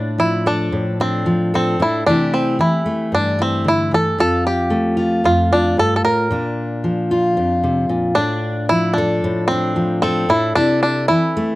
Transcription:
0.00 0.71 A2 soft
0.00 0.21 D4 medium
0.00 0.99 D4 soft
0.18 1.25 F3 soft
0.18 0.47 E4 medium
0.46 1.01 D4 medium
0.46 1.54 A4 soft
0.72 1.76 A2 soft
1.00 1.54 C4 medium
1.00 1.76 D4 soft
1.26 1.76 F3 soft
1.54 1.81 C4 medium
1.54 2.10 A4 soft
1.79 2.02 A2 soft
1.79 2.03 D4 soft
1.79 2.06 E4 medium
2.06 2.59 C3 medium
2.06 2.58 E3 soft
2.06 2.85 A3 soft
2.06 2.33 D4 medium
2.06 3.37 E4 soft
2.06 4.17 G4 soft
2.34 2.58 C4 medium
2.59 3.90 E3 soft
2.59 3.14 E4 medium
2.86 4.15 A3 soft
3.12 4.15 G2 soft
3.12 3.40 D4 medium
3.39 3.67 C4 medium
3.39 4.15 E4 soft
3.64 3.91 D3 soft
3.64 3.94 E4 medium
3.91 4.18 E3 soft
3.91 4.19 A4 medium
4.18 5.23 F2 medium
4.18 4.96 F4 soft
4.18 4.46 A4 medium
4.47 5.28 G4 medium
4.70 6.27 A3 soft
4.97 5.52 F4 soft
5.24 5.77 F2 soft
5.24 5.52 F4 medium
5.53 5.76 D4 medium
5.53 6.31 F4 medium
5.77 6.04 G2 soft
5.77 5.95 A4 medium
5.96 6.03 A4 medium
6.05 6.31 A2 soft
6.05 7.59 A#4 medium
6.30 7.37 A#2 soft
6.30 8.14 D4 soft
6.84 8.13 F3 soft
7.11 8.96 F4 medium
7.37 8.16 F2 medium
7.64 7.89 C3 soft
7.89 8.16 A#2 soft
8.15 9.23 A2 soft
8.15 8.65 D4 medium
8.15 9.49 D4 soft
8.69 9.75 F3 soft
8.69 8.97 E4 medium
8.94 9.47 D4 medium
8.98 10.03 A4 medium
9.24 10.26 A2 medium
9.48 10.01 C4 medium
9.48 10.26 D4 soft
9.76 10.25 F3 medium
10.02 10.29 C4 medium
10.02 11.55 A4 medium
10.29 10.52 A2 medium
10.29 10.52 D4 soft
10.29 10.54 E4 medium
10.55 11.09 C3 medium
10.55 10.80 D4 medium
10.55 11.55 E4 soft
10.83 11.08 D4 medium
11.08 11.55 E3 soft
11.08 11.55 E4 medium
11.37 11.55 A3 medium

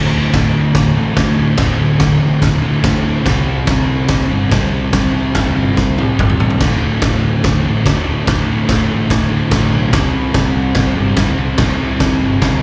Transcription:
0.00 0.94 D2 medium
0.00 0.95 A2 loud
0.00 0.93 D3 loud
0.13 0.28 D1 medium
0.34 0.49 D1 medium
0.34 kick loud
0.34 snare loud
0.34 crash medium
0.54 0.70 D1 medium
0.75 0.91 D1 medium
0.75 kick loud
0.75 snare loud
0.75 crash medium
0.95 1.12 A1 medium
0.95 1.14 D2 medium
0.95 1.16 A2 medium
0.95 1.15 D3 medium
1.15 1.56 D2 medium
1.15 1.33 D2 medium
1.15 1.58 A2 medium
1.15 kick loud
1.15 snare loud
1.15 crash medium
1.19 1.59 D3 loud
1.37 1.53 D1 medium
1.57 1.74 D1 loud
1.57 2.61 D2 medium
1.57 2.62 A2 loud
1.57 kick loud
1.57 snare loud
1.57 crash medium
1.62 2.60 D3 loud
1.79 1.95 D1 medium
2.00 2.16 D1 medium
2.00 kick loud
2.00 snare loud
2.00 crash medium
2.19 2.36 A1 loud
2.42 2.74 D1 medium
2.42 kick loud
2.42 snare medium
2.42 crash medium
2.61 2.81 D2 medium
2.61 2.83 A2 medium
2.61 2.82 D3 medium
2.82 3.00 A1 medium
2.82 3.23 D2 medium
2.82 3.25 A2 medium
2.82 3.26 D3 medium
2.82 kick loud
2.82 snare loud
2.82 crash medium
3.04 3.20 D1 loud
3.24 3.42 C2 medium
3.24 4.28 C3 loud
3.24 4.29 G3 medium
3.24 4.28 C4 medium
3.24 kick loud
3.24 snare loud
3.24 crash medium
3.46 3.62 C2 medium
3.67 3.84 C2 medium
3.67 kick loud
3.67 snare loud
3.67 crash medium
3.88 4.04 C2 medium
4.09 4.25 C2 medium
4.09 kick loud
4.09 snare loud
4.09 crash medium
4.29 4.46 G1 medium
4.29 4.49 C3 medium
4.29 4.50 G3 medium
4.29 4.49 C4 medium
4.50 4.67 C2 loud
4.50 4.91 C3 medium
4.50 4.93 G3 medium
4.50 kick loud
4.50 snare loud
4.50 crash medium
4.55 4.94 C4 medium
4.73 4.88 C2 medium
4.93 5.09 C2 loud
4.93 5.96 C3 medium
4.93 5.97 G3 loud
4.93 kick loud
4.93 snare loud
4.93 crash medium
4.97 5.96 C4 loud
5.14 5.30 C2 loud
5.35 5.51 C2 medium
5.35 kick loud
5.35 snare loud
5.35 crash medium
5.55 5.71 G1 medium
5.77 6.08 C2 medium
5.77 kick loud
5.77 snare medium
5.98 6.17 C3 medium
5.98 6.18 G3 medium
5.98 6.17 C4 medium
5.98 high tom medium
6.18 6.35 G1 loud
6.18 6.58 C3 medium
6.18 6.60 G3 medium
6.18 kick loud
6.18 mid tom medium
6.22 6.61 C4 medium
6.30 mid tom medium
6.40 6.55 A1 medium
6.40 floor tom loud
6.50 floor tom medium
6.59 6.76 D1 medium
6.59 7.62 D2 medium
6.59 7.63 A2 medium
6.59 7.63 D3 loud
6.59 kick loud
6.59 snare loud
6.59 crash medium
6.82 6.97 D1 medium
7.02 7.18 D1 medium
7.02 kick loud
7.02 snare loud
7.02 crash medium
7.23 7.38 D1 medium
7.44 7.59 D1 medium
7.44 kick loud
7.44 snare loud
7.44 crash medium
7.64 7.80 A1 medium
7.64 7.84 D2 medium
7.64 7.85 A2 medium
7.64 7.84 D3 loud
7.85 8.24 D2 medium
7.85 8.01 D2 medium
7.85 8.26 A2 medium
7.85 8.27 D3 medium
7.85 kick loud
7.85 snare loud
7.85 crash medium
8.07 8.22 D1 loud
8.25 8.43 D1 medium
8.25 9.29 D2 medium
8.25 9.30 A2 medium
8.25 9.28 D3 loud
8.25 kick loud
8.25 snare loud
8.25 crash medium
8.47 8.63 D1 loud
8.69 8.84 D1 medium
8.69 kick loud
8.69 snare loud
8.69 crash medium
8.90 9.05 A1 medium
9.10 9.42 D1 medium
9.10 kick loud
9.10 snare loud
9.10 crash medium
9.29 9.51 A2 medium
9.29 9.49 D3 loud
9.34 9.49 D2 medium
9.50 9.67 A1 loud
9.50 9.90 D2 medium
9.50 9.92 A2 medium
9.50 9.93 D3 medium
9.50 kick loud
9.50 snare loud
9.50 crash medium
9.72 9.94 B1 loud
9.91 10.09 C2 loud
9.91 10.95 C3 medium
9.91 10.97 G3 medium
9.91 kick loud
9.91 snare loud
9.91 crash medium
9.96 10.95 C4 loud
10.14 10.30 C2 medium
10.34 10.50 C2 medium
10.34 kick loud
10.34 snare loud
10.34 crash medium
10.56 10.71 C2 medium
10.75 10.91 C2 loud
10.75 kick loud
10.75 snare medium
10.75 crash medium
10.96 11.12 G1 medium
10.96 11.14 C3 medium
10.96 11.17 G3 medium
10.96 11.16 C4 medium
11.16 11.33 C2 medium
11.16 11.56 C3 medium
11.16 11.59 G3 medium
11.16 11.59 C4 loud
11.16 kick loud
11.16 snare loud
11.16 crash medium
11.38 11.54 C2 loud
11.58 11.75 C2 loud
11.58 12.62 C3 loud
11.58 12.62 G3 medium
11.58 kick loud
11.58 snare loud
11.58 crash medium
11.62 12.61 C4 loud
11.80 11.96 C2 loud
12.00 12.16 C2 medium
12.00 kick loud
12.00 snare loud
12.00 crash medium
12.22 12.38 G1 medium
12.42 12.62 C2 medium
12.42 kick medium
12.42 snare loud
12.42 crash medium

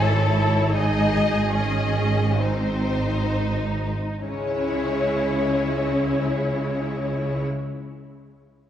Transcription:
0.00 3.88 G#1 medium
0.00 3.88 G#2 soft
0.00 0.75 E4 medium
0.00 0.75 A4 medium
0.00 0.76 C#5 soft
0.74 1.53 D#4 medium
0.74 2.36 G#4 medium
0.74 1.54 D#5 medium
1.52 2.38 C#4 soft
1.56 2.38 D#5 soft
2.38 3.31 C4 soft
2.38 4.25 D#4 soft
2.38 3.93 C5 soft
4.23 7.44 C#2 soft
4.23 7.43 C#3 soft
4.23 7.42 G#3 soft
4.23 7.43 C#4 medium
4.23 7.42 E4 soft
4.23 7.44 C#5 soft

